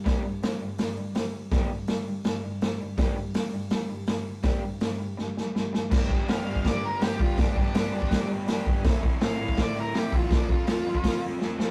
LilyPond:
<<
  \new Staff \with { instrumentName = "Lead electric guitar" } { \time 4/4 \key g \major \tempo 4 = 164 r1 | r1 | r1 | r1 |
\key g \mixolydian r4 f''4 d''8 bes'8 g'8 f'8 | d'8 d'2 r4. | r4 f''4 d''8 bes'8 g'8 f'8 | d'8 f'2 r4. | }
  \new Staff \with { instrumentName = "Overdriven electric guitar" } { \time 4/4 \key g \major <g b d' g'>8 r2. r8 | <g b d' g'>8 r2. r8 | <g b d' g'>8 r2. r8 | <g b d' g'>8 r2. r8 |
\key g \mixolydian <g, d g b d' g'>8 <g b d' g'>8 <g, d g b d' g'>8 <g b d' g'>4. <g b d' g'>8 <g b d' g'>8 | <g, d g b d' g'>8 <g b d' g'>8 <g, d g b d' g'>8 <g b d' g'>4. <g b d' g'>8 <g b d' g'>8 | <a, e c' e' a'>8 <c' e' a'>8 <a, e c' e' a'>8 <c' e' a'>4. <e c' e' a'>8 <c' e' a'>8 | <f c' f' a'>8 <c' f' a'>8 <f c' f' a'>8 <c' f' a'>4. <f c' f' a'>8 <c' f' a'>8 | }
  \new Staff \with { instrumentName = "Cello" } { \clef bass \time 4/4 \key g \major g,8 g,8 g,8 g,8 g,8 g,8 g,4 | g,8 g,8 g,8 g,8 g,8 g,8 g,8 g,8 | g,8 g,8 g,8 g,8 g,8 g,8 g,4 | g,8 g,8 g,8 g,8 g,8 g,8 g,8 g,8 |
\key g \mixolydian g,8 g,8 g,8 g,8 g,8 g,8 g,8 g,8 | g,8 g,8 g,8 g,8 g,8 g,8 g,8 g,8 | a,8 a,8 a,8 a,8 a,8 a,8 a,8 e,8 | f,8 f,8 f,8 f,8 f,8 f,8 f,8 f,8 | }
  \new DrumStaff \with { instrumentName = "Drums" } \drummode { \time 4/4 <hho bd sn>4 <hho sn>4 <hho sn>4 <hho sn>4 | <hho bd sn>4 <hho sn>4 <hho sn>4 <hho sn>4 | <hho bd sn>4 <hho sn>4 <hho sn>4 <hho sn>4 | <hho bd sn>4 <hho sn>4 sn8 sn8 sn8 sn8 |
<cymc bd sn>8 bd8 <hho sn>8. bd16 <hho bd sn>4 <hho sn>8 bd8 | <hho bd sn>8 bd8 <hho sn>8. bd16 <hho bd sn>4 <hho sn>8 bd8 | <hho bd sn>8 bd8 <hho sn>8. bd16 <hho bd sn>4 <hho sn>8 bd8 | <hho bd sn>8 bd8 <hho sn>8. bd16 <hho bd sn>4 sn8 sn8 | }
>>